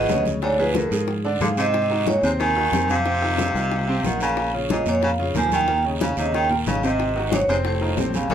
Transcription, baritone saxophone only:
Already playing: B2
0.42 G#2
0.59 G#2
0.76 F2
1.41 D3
1.57 C3
2.06 A#2
2.23 G#2
2.40 D#3
2.90 C3
4.05 D#3
4.22 C#3
4.70 A#2
4.87 A#2
5.04 C#3
5.37 F3
5.53 D#3
6.01 C#3
6.18 C3
6.35 D#3
6.66 C#3
6.84 C3
7.28 G#2
7.33 A#2
7.49 G#2
7.66 A2
8.14 C#3
8.30 A#2

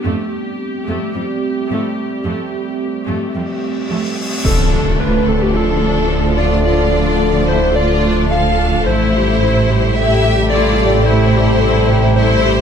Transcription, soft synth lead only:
4.46 A4
5.00 B4
5.29 A4
5.43 G4
5.57 A4
6.38 D5
6.65 D5
7.49 C5
7.76 D5
8.31 F5
8.86 C5
9.97 E5
10.50 D5
11.06 C5
12.16 C5

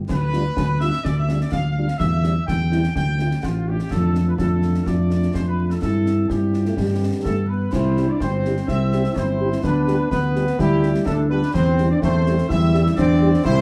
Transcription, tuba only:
0.10 D2
0.57 D2
1.05 D2
1.53 D2
2.01 E2
2.49 E2
2.96 D2
3.44 A1
3.91 F2
4.39 F2
4.87 F2
5.35 F2
5.82 G2
6.30 G2
6.77 G2
7.25 G2
7.72 C2
8.21 G1
8.68 C2
9.16 G1
9.63 D2
10.11 D2
10.59 D2
11.07 D2
11.55 E2
12.02 E2
12.50 E2
12.97 E2
13.45 C2

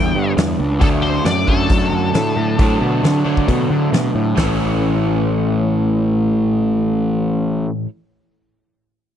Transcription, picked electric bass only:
Already playing: E2
0.15 G2
0.37 E2
0.59 C#2
0.82 D2
1.25 F#2
1.48 F#2
1.70 F#2
1.92 F#2
2.15 A2
2.36 A2
2.59 A2
2.81 B2
3.03 D3
3.26 D3
3.48 B2
3.70 D3
3.92 B2
4.15 A2
4.37 A1

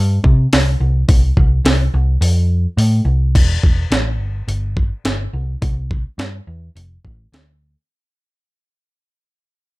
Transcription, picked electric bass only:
Already playing: G2
0.24 C3
0.53 C2
0.80 C2
1.08 C2
1.37 C2
1.65 C2
1.94 C2
2.21 F2
2.77 A2
3.05 C2
3.36 E1
3.63 E1
3.91 A1
4.20 G1
4.48 G1
5.05 G1
5.33 C2
5.62 C2
6.18 G2
6.47 E2
6.75 F1
7.05 A1
7.32 D2

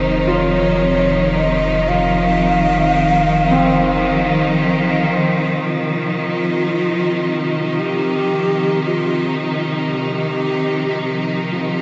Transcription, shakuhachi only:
Already playing: C5
0.31 C#5
1.38 D#5
1.89 F5
5.64 F4
7.79 G4
8.87 F4
9.93 G4

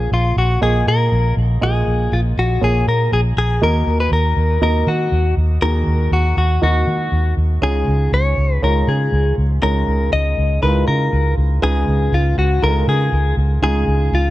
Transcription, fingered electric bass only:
0.12 A#1
0.36 A#1
0.62 A#1
0.87 A#2
1.12 A#1
1.37 A#1
1.62 A#1
1.87 A#1
2.12 A#1
2.37 A#1
2.62 A#1
2.87 A#2
3.12 A#1
3.37 A#1
3.62 D#2
3.87 D#2
4.12 D#2
4.37 D#2
4.61 D#2
4.87 D#3
5.12 D#2
5.37 D#2
5.62 D#2
5.87 D#2
6.12 D#2
6.37 D#2
6.62 D#2
6.87 D#3
7.12 D#2
7.37 D#2
7.62 C#2
7.88 C#2
8.12 C#2
8.38 C#2
8.62 C#2
8.87 C#3
9.12 C#2
9.38 C#2
9.63 C#2
9.87 C#2
10.13 C#2
10.38 C#2
10.63 C#2
10.88 C#3
11.13 C#2
11.37 C#2
11.63 C#2
11.88 C#2
12.12 C#2
12.38 C#2
12.63 C#2
12.87 C#3
13.12 C#2
13.37 C#2
13.62 C#2
13.87 C#2
14.12 C#2

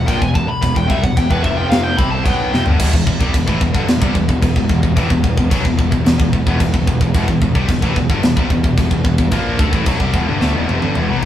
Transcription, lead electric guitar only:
0.08 G5
0.22 G#5
0.35 A5
0.49 B5
0.62 B5
0.77 G5
0.91 E5
1.03 F#5
1.18 G5
1.31 B4
1.43 E5
1.57 G5
1.70 F5
1.83 G5
1.97 B5
2.11 A5
2.24 G5

